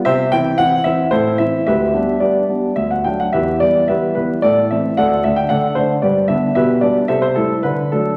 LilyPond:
<<
  \new Staff \with { instrumentName = "Grand piano" } { \time 3/4 \key g \major \tempo 4 = 110 <g' c'' e''>8 g''8 fis''8 e''8 <e' a' c''>8 e''8 | <g' b' e''>4 <g' b' d''>4 e''16 fis''16 g''16 fis''16 | <g' b' e''>8 d''8 <g' b' e''>8 b'8 <a' d''>8 e''8 | <a' d'' fis''>8 e''16 g''16 <a' d'' fis''>8 c''8 <g' b' d''>8 e''8 |
<g' b' e''>8 d''8 <a' c'' e''>16 c''16 a'8 b'8 a'8 | }
  \new Staff \with { instrumentName = "Grand piano" } { \time 3/4 \key g \major c8 <e c' e'>8 <e c' e'>8 <e c' e'>8 a,8 <e c' e'>8 | d,8 <g b d'>8 <g b d'>8 <g b d'>8 d,8 <fis a d'>8 | e,8 <e g b>8 <e g b>8 <e g b>8 a,8 <e a c'>8 | d,8 <d a d'>8 <d a d'>8 <d a d'>8 g,8 <d b d'>8 |
b,8 <g b d'>8 c8 <g a e'>8 d8 <fis a d'>8 | }
>>